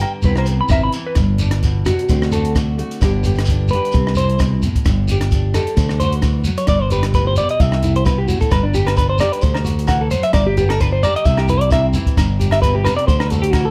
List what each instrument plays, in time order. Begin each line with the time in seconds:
Already playing: nylon-string guitar G2 B3 D4 G4
0.00 nylon-string guitar D3, clean electric guitar G5, closed hi-hat, low agogo
0.22 fingered electric bass C2, nylon-string guitar C3, clean electric guitar B4, kick, shekere
0.26 nylon-string guitar B3 C4 E4
0.36 clean electric guitar C5, cross-stick, low agogo
0.46 nylon-string guitar B3, closed hi-hat, shekere
0.61 clean electric guitar B5
0.68 fingered electric bass G#1, nylon-string guitar E4, clean electric guitar E5, kick, cross-stick, low agogo, shekere
0.83 clean electric guitar B5
0.92 nylon-string guitar E3, closed hi-hat, shekere
1.07 clean electric guitar B4
1.15 fingered electric bass G1, nylon-string guitar G2, kick, cross-stick, closed hi-hat, shekere
1.38 nylon-string guitar D4, closed hi-hat, shekere
1.51 cross-stick, closed hi-hat, shekere
1.63 nylon-string guitar B2, kick, closed hi-hat, shekere
1.85 nylon-string guitar C3, clean electric guitar F#4, cross-stick, closed hi-hat, shekere
1.99 closed hi-hat
2.09 fingered electric bass D2, nylon-string guitar D3 A3 C4, kick, closed hi-hat, shekere
2.22 cross-stick
2.32 nylon-string guitar F#4, clean electric guitar A4, closed hi-hat, shekere
2.45 closed hi-hat
2.55 nylon-string guitar F#4, kick, cross-stick, closed hi-hat, shekere
2.78 nylon-string guitar A3 F#4, closed hi-hat
2.91 closed hi-hat, shekere
3.01 fingered electric bass G1, nylon-string guitar G2 D3 B3 D4 G4, kick, cross-stick, closed hi-hat, shekere
3.23 nylon-string guitar G4, closed hi-hat, shekere
3.35 cross-stick, closed hi-hat, shekere
3.45 kick, shekere
3.50 nylon-string guitar D4, closed hi-hat
3.68 clean electric guitar B4, shekere
3.73 nylon-string guitar D3 G4, closed hi-hat
3.85 closed hi-hat
3.92 fingered electric bass C2, kick, closed hi-hat, shekere
3.96 nylon-string guitar C3
4.07 cross-stick
4.15 nylon-string guitar E4, clean electric guitar C5, closed hi-hat, shekere
4.29 closed hi-hat
4.39 nylon-string guitar B2, kick, cross-stick, closed hi-hat, shekere
4.62 nylon-string guitar A2, closed hi-hat, shekere
4.75 kick, closed hi-hat, shekere
4.85 fingered electric bass G1, nylon-string guitar G2, kick, cross-stick, closed hi-hat, shekere
5.08 nylon-string guitar G4, closed hi-hat, shekere
5.21 cross-stick, closed hi-hat, shekere
5.31 nylon-string guitar D4, kick, closed hi-hat, shekere
5.54 nylon-string guitar D3 G4, clean electric guitar A4, cross-stick, closed hi-hat, shekere
5.67 closed hi-hat
5.77 fingered electric bass D2, nylon-string guitar D3, kick, closed hi-hat, shekere
5.89 cross-stick
6.00 nylon-string guitar F#4, clean electric guitar C5, closed hi-hat, shekere
6.12 closed hi-hat
6.22 nylon-string guitar E3, kick, cross-stick, closed hi-hat, shekere
6.44 nylon-string guitar F#3, closed hi-hat, shekere
6.57 clean electric guitar C#5, closed hi-hat, shekere
6.67 fingered electric bass G1, nylon-string guitar G2, clean electric guitar D5, kick, cross-stick, closed hi-hat, shekere
6.82 clean electric guitar C5
6.90 nylon-string guitar G4, clean electric guitar B4, closed hi-hat, shekere
7.03 muted clean electric guitar stroke, cross-stick, closed hi-hat, shekere
7.14 nylon-string guitar A2, clean electric guitar B4, kick, closed hi-hat, shekere
7.27 clean electric guitar C5
7.36 nylon-string guitar B2, clean electric guitar D5, closed hi-hat, shekere
7.49 clean electric guitar D#5, closed hi-hat
7.60 fingered electric bass C2, nylon-string guitar C3, clean electric guitar E5, kick, closed hi-hat, shekere
7.72 cross-stick
7.83 nylon-string guitar E4, closed hi-hat, shekere
7.96 clean electric guitar C5, closed hi-hat
8.05 nylon-string guitar B2, clean electric guitar B4, kick, cross-stick, closed hi-hat, shekere
8.18 clean electric guitar G4
8.28 nylon-string guitar A2, clean electric guitar F#4, closed hi-hat, shekere
8.40 clean electric guitar A4, kick, closed hi-hat, shekere
8.50 fingered electric bass G1, nylon-string guitar G2, clean electric guitar B4, kick, cross-stick, closed hi-hat, low agogo, shekere
8.63 clean electric guitar D4
8.74 nylon-string guitar D4, clean electric guitar G4, closed hi-hat, shekere
8.86 clean electric guitar B4, cross-stick, closed hi-hat, low agogo, shekere
8.96 nylon-string guitar D4, clean electric guitar B4, kick, closed hi-hat, shekere
9.09 clean electric guitar C5
9.18 nylon-string guitar D3 G4, clean electric guitar D5, cross-stick, closed hi-hat, low agogo, shekere
9.32 clean electric guitar B4, closed hi-hat
9.42 fingered electric bass D2, nylon-string guitar D3, clean electric guitar C5, kick, closed hi-hat, shekere
9.54 cross-stick, low agogo
9.64 nylon-string guitar F#4, closed hi-hat, shekere
9.79 closed hi-hat
9.87 nylon-string guitar E3, clean electric guitar F#5, kick, cross-stick, closed hi-hat, low agogo, shekere
10.01 clean electric guitar A4
10.11 nylon-string guitar F#3, clean electric guitar C5, closed hi-hat, shekere
10.23 clean electric guitar E5, closed hi-hat, shekere
10.33 fingered electric bass G1, nylon-string guitar G2, clean electric guitar D5, kick, cross-stick, closed hi-hat, low agogo, shekere
10.47 clean electric guitar G4
10.57 nylon-string guitar B3, clean electric guitar G4, closed hi-hat, shekere
10.69 nylon-string guitar D4, clean electric guitar A4, cross-stick, closed hi-hat, low agogo, shekere
10.80 nylon-string guitar D4, clean electric guitar B4, kick, closed hi-hat, shekere
10.93 clean electric guitar C5
11.03 nylon-string guitar D3 G4, clean electric guitar D5, closed hi-hat, low agogo, shekere
11.16 clean electric guitar D#5, closed hi-hat
11.25 fingered electric bass C2, nylon-string guitar C3, clean electric guitar E5, kick, closed hi-hat, shekere
11.37 clean electric guitar G4, cross-stick, low agogo
11.48 nylon-string guitar E4, clean electric guitar B4, closed hi-hat, shekere
11.61 clean electric guitar D5, closed hi-hat
11.71 nylon-string guitar C4, clean electric guitar E5, kick, cross-stick, closed hi-hat, low agogo, shekere
11.93 nylon-string guitar E3 E4, closed hi-hat, shekere
12.06 kick, closed hi-hat, shekere
12.17 fingered electric bass G1, nylon-string guitar G2, kick, cross-stick, closed hi-hat, low agogo, shekere
12.39 nylon-string guitar G4, closed hi-hat, shekere
12.51 clean electric guitar E5, cross-stick, closed hi-hat, low agogo, shekere
12.62 nylon-string guitar B2, clean electric guitar B4, kick, closed hi-hat, shekere
12.75 clean electric guitar G4
12.84 nylon-string guitar C3, clean electric guitar B4, cross-stick, closed hi-hat, low agogo, shekere
12.97 clean electric guitar D5, closed hi-hat
13.07 fingered electric bass D2, nylon-string guitar D3, clean electric guitar C5, kick, closed hi-hat, shekere
13.19 clean electric guitar B4, cross-stick, low agogo
13.30 nylon-string guitar F#4, clean electric guitar A4, closed hi-hat, shekere
13.42 clean electric guitar G4, closed hi-hat
13.52 nylon-string guitar E3, clean electric guitar F#4, kick, cross-stick, closed hi-hat, low agogo, shekere
13.65 clean electric guitar A4